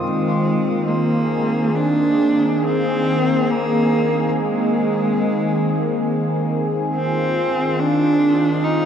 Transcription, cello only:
0.01 G#3
0.88 A#3
1.76 D4
2.63 C4
3.51 A#3
4.29 A#3
4.37 G#3
6.95 C4
7.80 D4
8.64 D#4

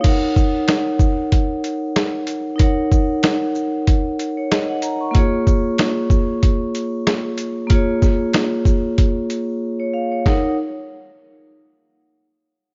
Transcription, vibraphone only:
0.01 D#4 A#4
0.06 C#5 F#5
2.56 D#4 A#4
2.61 C#5 F#5
4.37 C#5
4.51 D#5
4.69 F#5
4.82 A#5
5.01 C#6
5.11 A#3 F4
5.16 G#4 C#5
7.67 A#3 F4
7.72 G#4 C#5
9.80 C#5
9.94 F5
10.12 C#5
10.26 D#4 A#4 C#5 F#5

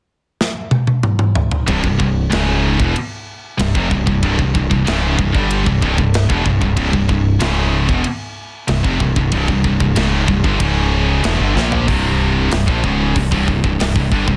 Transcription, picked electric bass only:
1.68 C1
1.84 C1
2.00 C1
2.32 C#1
2.80 E1
3.59 C1
3.75 F1
3.91 C1
4.07 C1
4.23 C1
4.39 C1
4.55 C1
4.71 C1
4.87 C#1
5.19 C1
5.35 G1
5.67 C1
5.82 C1
5.98 C1
6.30 E1
6.45 C1
6.61 C1
6.77 C1
6.94 C1
7.09 C1
7.41 C#1
7.89 E1
8.69 C1
8.85 F1
9.00 C1
9.16 C1
9.32 C1
9.48 C1
9.64 C1
9.80 C1
9.96 C#1
10.28 C1
10.44 G1
10.60 C#1
11.24 E1
11.40 G1
11.56 A#1
12.52 C1
12.68 A#1
12.84 C#1
13.16 C1
13.32 C1
13.48 C1
13.64 C1
13.80 C1
13.95 C1
14.12 G1
14.28 C1

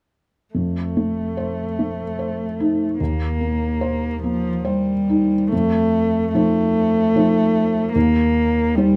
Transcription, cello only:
0.54 A3
3.00 A#3
4.23 F3
4.65 G3
5.51 A3
6.33 A3
7.93 A#3
8.75 G3

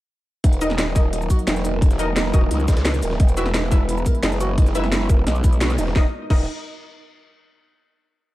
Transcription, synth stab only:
0.61 D#4 A#4 D#5
0.96 D#4 A#4 D#5
1.99 D#4 A#4 D#5
2.34 D#4 A#4 D#5
3.37 E4 B4 E5
3.72 E4 B4 E5
4.75 E4 B4 E5
5.96 D#4 A#4 D#5
6.30 D#4 A#4 D#5

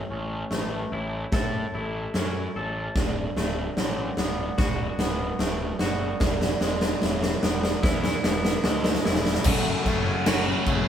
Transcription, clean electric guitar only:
Already playing: A2
0.10 C#4
0.51 A3
0.92 E4
1.33 A4
1.75 E4
2.16 C#4
2.56 A4
2.96 D2
3.37 A3
3.77 D3
4.18 B3
4.58 F#4
5.00 B3
5.40 A3
5.81 F#4
6.21 E2
6.62 G#3
7.02 E3
7.42 B3
7.83 E4
8.23 B3
8.64 G#3
9.05 E4
9.45 F#2
9.86 A3
10.28 F#4
10.67 A3

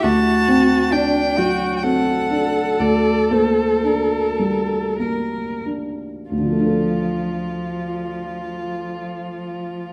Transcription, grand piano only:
0.04 D2
0.48 C4
0.93 D4
1.38 F#3
1.84 C4
2.31 D4
2.80 D2
3.31 A#3
3.84 D4
4.39 G3
5.00 A#3
5.66 D4
6.31 D2
6.38 D3
6.45 F3
6.52 A3
6.60 D4
6.66 A4

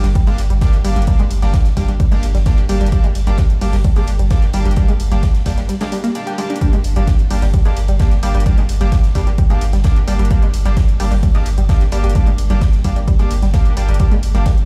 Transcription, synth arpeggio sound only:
0.04 G3
0.15 G3
0.27 G#3
0.50 G3
0.85 G3
0.96 G3
1.08 G3
1.19 G#3
1.42 G3
1.77 G3
1.89 G3
2.00 G3
2.12 G#3
2.35 G3
2.69 G3
2.81 G3
2.92 G3
3.04 G#3
3.27 G3
3.61 G3
3.73 G3
3.84 G3
3.96 G#3
4.19 G3
4.54 G3
4.65 G3
4.77 G3
4.89 G#3
5.12 G3
5.46 G3
5.58 G3
5.69 G3
5.81 G#3
5.92 G3
6.04 A#3
6.27 G4
6.38 G#3
6.50 D4
6.61 G3
6.73 G#3
6.96 G3
7.31 G3
7.42 G3
7.54 G3
7.65 G#3
7.88 G3
8.23 G3
8.35 G3
8.46 G3
8.58 G#3
8.81 G3
9.15 G3
9.27 G3
9.38 G3
9.50 G#3
9.73 G3
10.08 G3
10.19 G3
10.31 G3
10.42 G#3
10.65 G3
11.00 G3
11.12 G3
11.23 G3
11.35 G#3
11.58 G3
11.92 G3
12.04 G3
12.15 G3
12.27 G#3
12.50 G3
12.85 G3
12.96 G3
13.08 G3
13.19 G#3
13.42 G3
13.77 G3
13.89 G3
14.00 G3
14.12 G#3
14.35 G3
14.46 G3

